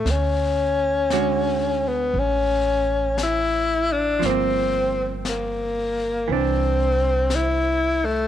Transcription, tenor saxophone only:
X:1
M:4/4
L:1/16
Q:"Swing" 1/4=58
K:Dlyd
V:1 name="Tenor saxophone"
C6 B,2 C4 E2 D2 | =C3 z _B,4 C4 E2 A,2 |]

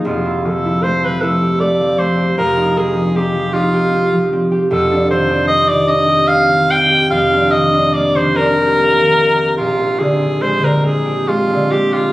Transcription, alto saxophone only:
X:1
M:6/8
L:1/16
Q:3/8=50
K:Eb
V:1 name="Alto saxophone"
F2 =A2 c _c A2 d2 =c2 | B2 A2 G2 F4- F z | =A2 c2 e d e2 f2 g2 | f2 e2 d c B6 |
F2 A2 c B A2 F2 G F |]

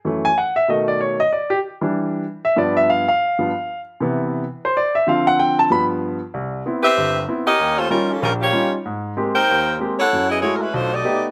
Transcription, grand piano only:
X:1
M:4/4
L:1/8
Q:"Swing" 1/4=191
K:Gmix
V:1 name="Grand piano"
z _a ^f e ^d =d ^c ^d | d G z4 z e | d e f f4- f | z4 z c d e |
f ^f g a b z3 | z8 | z8 | z8 |
z8 |]
V:2 name="Grand piano"
[^F,,E,A,] z3 [B,,^D,A,]3 z | z3 [E,G,D]3 z2 | [G,,F,B,]3 z2 [G,,F,B,] z2 | z [C,E,B,]3 z4 |
[D,F,C]4 [G,,F,B,]3 z | C,,2 [B,CE] z G,,,2 [B,CE] z | _E,,2 [G,_D_EF] z _B,,,2 [G,DEF] z | _A,,2 [_A,_B,CG] z _E,,2 [A,B,CG] z |
^F,,2 [^G,A,E^F] z B,,,2 [A,B,^D=G] z |]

